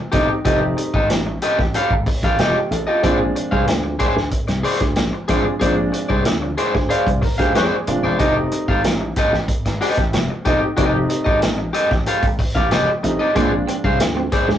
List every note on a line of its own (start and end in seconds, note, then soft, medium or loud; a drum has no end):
0.12 0.27 E1 medium
0.12 0.34 G3 medium
0.12 0.35 A3 medium
0.12 0.35 C4 medium
0.12 0.35 D#4 medium
0.12 0.30 G4 medium
0.12 0.29 A4 medium
0.12 0.27 D#5 medium
0.12 kick loud
0.12 snare soft
0.12 closed hi-hat medium
0.29 muted clean electric guitar stroke soft
0.45 0.73 F1 medium
0.45 1.30 G3 medium
0.45 1.30 A3 medium
0.45 1.31 C4 medium
0.45 1.31 D#4 medium
0.45 0.63 G4 medium
0.45 0.61 A4 medium
0.45 0.60 D#5 medium
0.45 kick loud
0.45 closed hi-hat loud
0.61 muted clean electric guitar stroke soft
0.77 muted clean electric guitar stroke soft
0.77 closed hi-hat medium
0.94 1.10 G#1 medium
0.94 1.08 G4 soft
0.94 1.08 A4 medium
0.94 1.08 D#5 medium
0.94 kick medium
1.10 1.38 A1 medium
1.10 muted clean electric guitar stroke soft
1.10 snare loud
1.10 closed hi-hat loud
1.27 muted clean electric guitar stroke soft
1.42 1.60 G4 medium
1.42 1.59 A4 medium
1.42 1.58 D#5 loud
1.42 closed hi-hat medium
1.59 1.72 A1 medium
1.59 muted clean electric guitar stroke soft
1.59 kick medium
1.59 snare soft
1.74 1.92 G4 medium
1.74 1.93 A4 medium
1.74 1.93 F5 loud
1.74 closed hi-hat medium
1.90 2.04 G#1 medium
1.90 kick medium
2.06 muted clean electric guitar stroke soft
2.06 kick loud
2.06 open hi-hat medium
2.23 2.37 A1 medium
2.23 2.38 G4 medium
2.23 2.37 A4 medium
2.23 2.37 F5 medium
2.23 kick medium
2.23 snare soft
2.23 closed hi-hat soft
2.39 2.53 F1 medium
2.39 2.54 F4 medium
2.39 2.57 G4 medium
2.39 2.57 A4 medium
2.39 2.57 D#5 medium
2.39 snare loud
2.39 closed hi-hat medium
2.55 2.70 G4 medium
2.71 2.85 A1 medium
2.71 2.87 A4 medium
2.71 muted clean electric guitar stroke soft
2.71 closed hi-hat medium
2.87 3.18 F4 medium
2.87 3.02 G4 medium
2.87 3.01 A4 medium
2.87 3.01 D#5 medium
3.03 3.31 A#1 loud
3.03 3.88 F3 medium
3.03 3.88 G#3 medium
3.03 3.88 C4 medium
3.03 3.89 D4 medium
3.03 3.21 G#4 medium
3.03 3.19 C5 medium
3.03 3.18 D5 loud
3.03 kick loud
3.03 closed hi-hat medium
3.20 muted clean electric guitar stroke soft
3.36 muted clean electric guitar stroke soft
3.36 closed hi-hat medium
3.51 3.66 C2 medium
3.51 3.66 G#4 medium
3.51 3.66 C5 medium
3.51 3.65 F5 medium
3.51 kick medium
3.67 3.95 D2 loud
3.67 muted clean electric guitar stroke soft
3.67 snare loud
3.67 closed hi-hat loud
3.84 muted clean electric guitar stroke soft
3.99 4.17 G#4 medium
3.99 4.15 C5 medium
3.99 4.14 D5 medium
3.99 kick medium
3.99 closed hi-hat medium
4.15 4.30 D2 medium
4.15 muted clean electric guitar stroke soft
4.15 snare soft
4.31 kick medium
4.31 closed hi-hat medium
4.48 4.62 C2 medium
4.48 muted clean electric guitar stroke medium
4.48 snare soft
4.48 closed hi-hat soft
4.63 4.82 G#4 medium
4.63 4.81 C5 medium
4.63 4.80 D5 medium
4.63 open hi-hat medium
4.80 4.95 D2 medium
4.80 muted clean electric guitar stroke soft
4.80 kick medium
4.80 snare soft
4.80 closed hi-hat soft
4.96 5.11 A#1 medium
4.96 muted clean electric guitar stroke soft
4.96 snare loud
4.96 closed hi-hat medium
5.13 muted clean electric guitar stroke soft
5.28 5.43 A1 medium
5.28 5.51 F3 medium
5.28 5.51 G#3 medium
5.28 5.51 C4 medium
5.28 5.51 D4 medium
5.28 5.46 G#4 medium
5.28 5.45 C5 medium
5.28 5.44 D5 loud
5.28 kick medium
5.28 snare soft
5.28 closed hi-hat medium
5.46 muted clean electric guitar stroke soft
5.60 5.89 A#1 loud
5.60 6.46 F3 medium
5.60 6.46 G#3 medium
5.60 6.47 C4 medium
5.60 6.47 D4 loud
5.60 5.78 G#4 medium
5.60 5.75 C5 medium
5.60 5.75 D5 medium
5.60 kick loud
5.60 closed hi-hat loud
5.76 muted clean electric guitar stroke soft
5.92 muted clean electric guitar stroke soft
5.92 closed hi-hat medium
6.09 6.26 C2 medium
6.09 6.24 G#4 soft
6.09 6.23 C5 medium
6.09 6.23 D5 medium
6.09 kick medium
6.25 6.54 D2 medium
6.25 muted clean electric guitar stroke soft
6.25 snare loud
6.25 closed hi-hat loud
6.42 muted clean electric guitar stroke soft
6.58 6.76 G#4 medium
6.58 6.74 C5 loud
6.58 6.73 D5 medium
6.58 6.74 D5 medium
6.58 closed hi-hat medium
6.74 6.88 D2 medium
6.74 6.90 C5 medium
6.74 muted clean electric guitar stroke soft
6.74 kick medium
6.74 snare soft
6.89 7.07 G#4 medium
6.89 7.08 C5 medium
6.89 7.20 D5 medium
6.89 7.08 F5 medium
6.89 closed hi-hat medium
7.07 7.20 C2 medium
7.07 kick loud
7.07 closed hi-hat soft
7.22 7.38 A#4 medium
7.22 muted clean electric guitar stroke soft
7.22 kick medium
7.22 open hi-hat medium
7.38 7.53 D2 medium
7.38 7.54 G4 medium
7.38 7.53 G#4 medium
7.38 7.53 C5 medium
7.38 7.52 F5 medium
7.38 kick medium
7.38 snare soft
7.38 closed hi-hat soft
7.55 7.69 F2 medium
7.55 7.75 G#4 medium
7.55 7.85 G#4 medium
7.55 7.75 C5 medium
7.55 7.76 D5 medium
7.55 snare loud
7.55 closed hi-hat medium
7.87 8.01 D#1 medium
7.87 8.08 F3 medium
7.87 8.08 G#3 medium
7.87 8.09 C4 medium
7.87 8.09 D4 medium
7.87 8.17 F4 medium
7.87 muted clean electric guitar stroke soft
7.87 closed hi-hat medium
8.03 8.19 E1 medium
8.03 8.18 G#4 soft
8.03 8.18 C5 soft
8.03 8.17 D5 medium
8.19 8.47 F1 loud
8.19 9.04 G3 medium
8.19 9.05 A3 medium
8.19 9.05 C4 medium
8.19 9.05 D#4 loud
8.19 8.37 G4 medium
8.19 8.36 A4 medium
8.19 8.35 D#5 loud
8.19 kick loud
8.19 closed hi-hat medium
8.36 muted clean electric guitar stroke soft
8.52 muted clean electric guitar stroke soft
8.52 closed hi-hat medium
8.68 8.82 G#1 medium
8.68 8.83 G4 medium
8.68 8.82 A4 medium
8.68 8.82 F5 medium
8.68 kick medium
8.84 9.11 A1 medium
8.84 muted clean electric guitar stroke soft
8.84 snare loud
8.84 closed hi-hat loud
9.01 muted clean electric guitar stroke soft
9.16 9.34 G4 medium
9.16 9.34 A4 medium
9.16 9.33 D#5 loud
9.16 kick medium
9.16 closed hi-hat medium
9.32 9.46 A1 medium
9.32 muted clean electric guitar stroke soft
9.32 snare soft
9.48 kick medium
9.48 closed hi-hat medium
9.65 9.79 G#1 medium
9.65 muted clean electric guitar stroke soft
9.65 snare soft
9.65 closed hi-hat soft
9.81 10.01 G4 medium
9.81 9.98 A4 medium
9.81 9.97 D#5 medium
9.81 open hi-hat medium
9.97 10.11 A1 medium
9.97 muted clean electric guitar stroke soft
9.97 kick medium
9.97 snare soft
9.97 closed hi-hat soft
10.13 10.27 F1 medium
10.13 muted clean electric guitar stroke soft
10.13 snare loud
10.13 closed hi-hat medium
10.30 muted clean electric guitar stroke soft
10.45 10.59 E1 medium
10.45 10.67 G3 medium
10.45 10.67 A3 medium
10.45 10.67 C4 medium
10.45 10.67 D#4 medium
10.45 10.63 G4 medium
10.45 10.61 A4 medium
10.45 10.60 D#5 medium
10.45 kick medium
10.45 snare soft
10.45 closed hi-hat medium
10.61 muted clean electric guitar stroke soft
10.77 11.05 F1 loud
10.77 11.62 G3 medium
10.77 11.62 A3 medium
10.77 11.63 C4 medium
10.77 11.63 D#4 loud
10.77 10.97 G4 medium
10.77 10.93 A4 medium
10.77 10.92 D#5 loud
10.77 kick loud
10.77 closed hi-hat loud
10.93 muted clean electric guitar stroke soft
11.09 muted clean electric guitar stroke soft
11.09 closed hi-hat medium
11.24 11.42 G#1 medium
11.24 11.40 G4 medium
11.24 11.39 A4 medium
11.24 11.39 D#5 medium
11.24 kick medium
11.41 11.70 A1 medium
11.41 muted clean electric guitar stroke soft
11.41 snare loud
11.41 closed hi-hat loud
11.58 muted clean electric guitar stroke medium
11.73 11.91 G4 medium
11.73 11.90 A4 medium
11.73 11.90 D#5 medium
11.73 closed hi-hat medium
11.91 12.05 A1 medium
11.91 muted clean electric guitar stroke medium
11.91 kick loud
11.91 snare soft
12.06 12.24 G4 medium
12.06 12.25 A4 medium
12.06 12.25 F5 medium
12.06 closed hi-hat medium
12.23 12.37 G#1 medium
12.23 kick loud
12.23 closed hi-hat soft
12.39 muted clean electric guitar stroke soft
12.39 kick loud
12.39 open hi-hat medium
12.55 12.69 A1 loud
12.55 12.69 G4 medium
12.55 12.69 A4 soft
12.55 12.69 F5 medium
12.55 kick medium
12.55 snare soft
12.55 closed hi-hat soft
12.71 12.85 F1 medium
12.71 12.89 G4 medium
12.71 12.89 A4 medium
12.71 12.89 D#5 loud
12.71 snare loud
12.71 closed hi-hat medium
13.03 13.17 A1 medium
13.03 13.24 G3 medium
13.03 13.25 A3 medium
13.03 13.25 C4 medium
13.03 13.25 D#4 medium
13.03 muted clean electric guitar stroke soft
13.03 closed hi-hat medium
13.19 13.34 G4 medium
13.19 13.34 A4 soft
13.19 13.33 D#5 medium
13.34 13.63 A#1 loud
13.34 14.20 F3 medium
13.34 14.20 G#3 medium
13.34 13.48 A#3 medium
13.34 14.20 C4 medium
13.34 14.20 D4 medium
13.34 13.53 G#4 medium
13.34 13.52 C5 medium
13.34 13.51 D5 medium
13.34 kick loud
13.34 closed hi-hat medium
13.52 muted clean electric guitar stroke soft
13.68 13.80 C4 medium
13.68 muted clean electric guitar stroke soft
13.68 closed hi-hat medium
13.84 13.98 C2 medium
13.84 13.98 G#4 soft
13.84 13.98 C5 medium
13.84 13.98 F5 medium
13.84 kick medium
14.00 14.27 D2 medium
14.00 muted clean electric guitar stroke soft
14.00 snare loud
14.00 closed hi-hat loud
14.15 14.28 C4 medium
14.15 muted clean electric guitar stroke soft
14.32 14.50 G#4 medium
14.32 14.49 C5 medium
14.32 14.48 D5 medium
14.32 muted clean electric guitar stroke soft
14.32 kick loud
14.32 closed hi-hat medium
14.48 14.58 D2 medium
14.48 14.58 G#3 medium
14.48 muted clean electric guitar stroke soft
14.48 snare soft